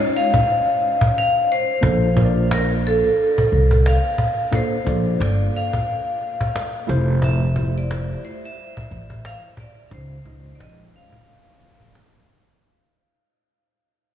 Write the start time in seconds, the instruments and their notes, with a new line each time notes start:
Already playing: tine electric piano G#3 C#4 D#4 F4 C#5, vibraphone C#5
0.14 vibraphone F5, cajon slap
0.34 cajon bass
0.48 cajon slap
0.69 cajon slap
0.81 cajon slap
1.01 cajon bass
1.18 vibraphone F5
1.52 vibraphone C5
1.81 upright bass A#1, tine electric piano A#3 D4 F4 A4 C5, cajon bass
2.15 tine electric piano A#3 D4 F4 A#4 C5, cajon bass
2.25 tine electric piano D5
2.51 vibraphone A#4, cajon slap
2.83 vibraphone A4, cajon slap
3.18 cajon slap
3.38 muted upright bass stroke, cajon bass
3.51 upright bass C2, cajon slap
3.71 cajon bass
3.86 vibraphone F5, cajon slap
4.18 cajon bass
4.51 tine electric piano A#3 D4 F4 A4 D5, cajon bass
4.55 vibraphone C5
4.85 upright bass A#1, tine electric piano A#3 D4 F4 A4 D5, cajon bass
5.20 upright bass G1, vibraphone D5, cajon slap
5.53 vibraphone F5, cajon slap
5.73 cajon bass
5.88 cajon slap
6.21 cajon slap
6.41 cajon bass
6.56 cajon slap
6.87 upright bass F1, tine electric piano A3 E4 F4 G4 C5, cajon slap
7.22 vibraphone E5, cajon bass
7.54 tine electric piano G3 E4 F4 G4 C5, cajon bass
7.61 tine electric piano A3
7.78 vibraphone D5
7.91 cajon slap
8.23 vibraphone C5, cajon slap
8.45 vibraphone E5
8.57 cajon slap
8.77 muted upright bass stroke, cajon bass
8.90 upright bass A1, cajon slap
9.10 cajon bass
9.25 vibraphone F5, cajon slap
9.57 vibraphone D5, cajon bass
9.91 upright bass C#2, tine electric piano G#3 C#4 D#4 F4 C5, vibraphone C5, cajon bass
10.24 upright bass C#2, tine electric piano G#3 C#4 D#4 F4 D#5, cajon bass
10.55 vibraphone D5
10.60 upright bass A#1, vibraphone D#5, cajon slap
10.93 vibraphone F5, cajon slap
11.12 cajon bass
11.27 cajon slap
11.48 cajon slap
11.60 cajon slap
11.80 cajon bass
11.95 cajon slap
12.27 cajon slap